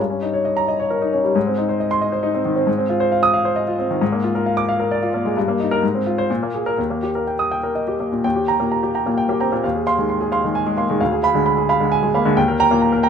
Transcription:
Already playing: G2
0.10 C#4
0.22 D#4
0.33 C#5
0.45 D#5
0.57 A#5
0.68 D#5
0.80 C#5
0.90 A#4
1.02 D#4
1.13 C#4
1.24 G3
1.36 G#2
1.47 C4
1.58 D#4
1.69 C5
1.80 D#5
1.91 C6
2.01 D#5
2.12 C5
2.23 D#4
2.34 C4
2.45 D#3
2.56 C4
2.67 G#2
2.78 C4
2.89 F4
3.00 C5
3.12 F5
3.23 D#6
3.34 F5
3.45 C5
3.56 D#5
3.68 F4
3.79 C4
3.91 D#3
4.02 G#2
4.12 A#3
4.24 F4
4.35 A#4
4.46 F5
4.57 D6
4.69 F5
4.79 A#4
4.91 D5
5.03 F4
5.14 A#3
5.25 G#3
5.37 G2
5.48 A#3
5.60 D#4
5.71 A#4
5.83 G#2
5.95 C4
6.06 F4
6.18 C5
6.30 A#2
6.43 A#3
6.54 G#4
6.66 A#4
6.78 D#2
6.90 A#3
7.03 G4
7.15 A#4
7.27 G5
7.39 D#6
7.51 G5
7.63 A#4
7.75 D#5
7.88 G4
8.00 A#3
8.12 A#2
8.24 D#2 G5
8.36 G4
8.48 G5 A#5
8.60 A#2 A#3
8.72 A#5
8.83 G4
8.95 G5 A#5
9.06 A#2 A#3
9.18 G5
9.29 A#3 G4
9.40 C4 G5 A#5
9.52 A#2 A#3
9.64 D#2 F5
9.75 G#4
9.87 F5 C6
9.98 D#3 G#3
10.09 C6
10.21 G#4
10.32 F5 C6
10.44 D#3 G#3
10.55 G#5
10.66 G#3 G#4
10.77 A#3 F5 C6
10.90 D#3 G#3
11.01 D2 F5
11.12 G#4
11.23 F5 B5
11.34 D3 G#3
11.46 B5
11.57 G#4
11.69 F5 B5
11.80 D3 G#3
11.92 G#5
12.03 G#3 G#4
12.14 A#3 F5 B5
12.25 D3 G#3
12.37 D#2 G5
12.48 A#4
12.60 G5 A#5
12.71 A#2 A#3
12.82 A#5
12.92 A#4
13.03 G5 A#5

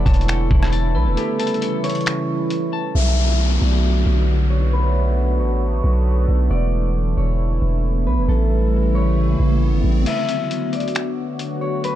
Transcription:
Already playing: D3 E3 A3 B3 E4 A4 D5
0.06 E1 C#5 A5, kick, closed hi-hat
0.14 closed hi-hat
0.21 closed hi-hat
0.28 A4, finger snap, closed hi-hat
0.51 E1 E4, kick
0.63 cross-stick
0.72 A5, closed hi-hat
0.95 B1 A4 B4
1.06 E1
1.17 C#3 E3 G3 G4 A4, closed hi-hat
1.39 A5, closed hi-hat
1.47 closed hi-hat
1.54 closed hi-hat
1.61 A4, closed hi-hat
1.84 C#5, closed hi-hat
1.89 closed hi-hat
1.95 closed hi-hat
2.01 closed hi-hat
2.06 finger snap, closed hi-hat
2.50 closed hi-hat
2.73 A5
2.95 B1 D3 F#3 A3 B3 F#4 E5, downlifter
3.61 B1 D5
4.06 B1
4.50 C#5
4.73 B4
5.39 A1 C#5
5.84 B1
6.28 B1
6.51 E1 E3 E4 D5, riser
7.17 E1 C#5
7.62 E1
8.06 B1 B4
8.17 E1
8.28 A1 C#3 E3 G3 E4 A4
8.95 C#5
9.40 A1
9.73 G1
9.84 A1
10.06 D3 F#3 A3 B3 F#4 E5, closed hi-hat, crash
10.29 closed hi-hat
10.51 closed hi-hat
10.73 D5, closed hi-hat
10.80 closed hi-hat
10.88 closed hi-hat
10.95 finger snap, closed hi-hat
11.39 closed hi-hat
11.61 C#5
11.84 B4, closed hi-hat

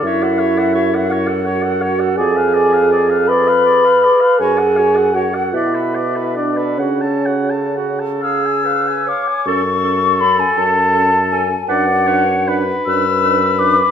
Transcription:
0.03 F#2 E4 F#4 C#5 E5
0.23 A4 F#5
0.39 F#4 C#5
0.57 A4 F#5
0.75 F#4 C#5
0.92 A4 F#5
1.09 F#4 C#5 F#5
1.27 A4 F#5
1.46 F#4 C#5
1.62 A4 F#5
1.81 F#4 C#5
2.00 A4 F#5
2.17 F2 G#4 D5 G#5
2.36 B4 F5
2.54 G#4 D5
2.73 B4 F5
2.91 G#4 D5
3.10 B4 F5
3.28 G#4 B4 D5 B5
3.48 B4 F5
3.65 G#4 D5
3.85 B4 F5
4.04 G#4 D5
4.21 B4 F5
4.40 F#2 F#4 G#4 C#5 G#5
4.58 A4 F#5
4.76 F#4 C#5
4.96 A4 F#5
5.15 F#4 C#5 F#5
5.34 A4 F#5
5.53 B2 E4 B4 D5 E5
5.74 A4 B4
5.93 B4 D5
6.15 A4 B4
6.36 D4 B4 D5
6.57 A4 B4
6.78 C#3 C#4 F#4 C#5 F#5
7.01 A4 A5
7.25 F#4 F#5
7.50 A4 A5
7.76 F#4 F#5
7.99 A4 A5
8.21 G#4 F5 E6
8.45 G#5
8.64 B4 F5
8.87 G#5
9.07 C#5 F5 D6
9.28 G#5
9.46 F#2 C#4 A4 C#6
9.83 C#4 A4
10.20 C#4 A4 B5
10.40 G#5
10.57 F#2 C#4 A4 A5
10.94 C#4 A4
11.32 C#4 A4 G#5
11.68 F#2 D4 B4 D5 F#5
12.07 D4 B4 C#5
12.48 D4 B4
12.86 F#2 D4 B4 E6
13.24 D4 B4
13.59 D4 B4 D6

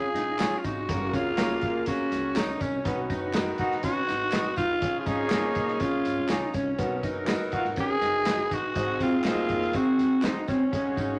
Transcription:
Already playing: C#3 G#3 C#4 F4 G#4
0.02 muted upright bass stroke
0.14 A#1 D#4, snare, closed hi-hat, tambourine
0.39 C#4 F4 G#4 C#5, snare, clap, closed hi-hat, tambourine
0.58 F4
0.64 G#1 D#4 F#4, kick, closed hi-hat, tambourine
0.88 F#1 C#3 A#3 C#4 F#4 G#4 A#4, kick, closed hi-hat, tambourine
1.13 C#2 C#4 F4, kick, closed hi-hat, tambourine
1.37 F#3 A#3 C#4 F#4 A#4 C#5, snare, clap, closed hi-hat, tambourine
1.61 D#2, kick, closed hi-hat, tambourine
1.86 C#4 F#4 A#4, kick, closed hi-hat, tambourine
2.00 muted upright bass stroke
2.12 C#2, snare, closed hi-hat, tambourine
2.35 C#4 D#4 F#4 A#4 C#5, snare, clap, closed hi-hat, tambourine
2.60 C2 C#4, kick, closed hi-hat, tambourine
2.85 B1 B2 D#3 B3 D#4 F#4 B4, kick, closed hi-hat, tambourine
3.10 F#1 D#4, kick, closed hi-hat, tambourine
3.33 D#4 F#4 A#4 B4 D#5, snare, clap, closed hi-hat, tambourine
3.58 A#1 D#4 F#4, kick, closed hi-hat, tambourine
3.71 snare
3.83 C#4 D#4 F#4 B4, kick, closed hi-hat, tambourine
3.96 muted upright bass stroke
4.07 G#1 D#4, snare, closed hi-hat, tambourine
4.32 D#4 F#4 B4 D#5, snare, clap, closed hi-hat, tambourine
4.56 D2 D#4 F4, kick, closed hi-hat, tambourine
4.81 C#2 C#3 F3 C#4 F4 G#4, kick, closed hi-hat, tambourine
5.00 F4
5.06 G#1 C#4 D#4, kick, closed hi-hat, tambourine
5.30 A#3 C#4 F4 G#4 C#5, snare, clap, closed hi-hat, tambourine
5.55 B1, kick, closed hi-hat, tambourine
5.68 snare
5.80 C#4 F4 G#4, kick, closed hi-hat, tambourine
5.93 A#1
6.05 G#1, closed hi-hat, tambourine
6.18 B1
6.28 C#2 C#4 D#4 F4 G#4 C#5, snare, clap, closed hi-hat, tambourine
6.54 C2 C#4, kick, closed hi-hat, tambourine
6.78 B1 B2 F#3 B3 D#4 F#4 A#4, kick, closed hi-hat, tambourine
7.03 F#1 D#4, kick, closed hi-hat, tambourine
7.27 B3 D#4 F#4 B4 D#5, snare, clap, closed hi-hat, tambourine
7.52 A#1 F4 F#4, kick, closed hi-hat
7.64 G#1, snare
7.76 B3 C#4 D#4 F#4, kick, closed hi-hat, tambourine
7.80 G#4
7.90 muted upright bass stroke
8.01 F#1 D#4, snare, closed hi-hat, tambourine
8.25 B3 D#4 F4 F#4 B4 D#5, snare, clap, closed hi-hat, tambourine
8.34 F#4
8.51 A1 D#4 F#4, kick, closed hi-hat, tambourine
8.75 G#1 G#2 D#3 C4 D#4 F#4 G#4 D#5, kick, closed hi-hat, tambourine
9.00 D#2 C4 F4, kick, closed hi-hat, tambourine
9.24 F#3 A#3 C4 D#4 F#4 G#4 C5 D#5, snare, clap, closed hi-hat, tambourine
9.49 F2, kick, closed hi-hat
9.62 snare
9.73 A#3 C4 D#4 F#4 G#4 D#5, kick, closed hi-hat, tambourine
9.79 C4
9.86 muted upright bass stroke
9.98 D#2, snare, closed hi-hat, tambourine
10.22 C4 D#4 F#4 G#4 C5 D#5, snare, clap, closed hi-hat, tambourine
10.47 D2 C4 C#4, kick, closed hi-hat, tambourine
10.72 C#2 C#3 G#3 C#4 F#4 G#4, kick, closed hi-hat, tambourine
10.96 G#1 D#4, kick, closed hi-hat, tambourine

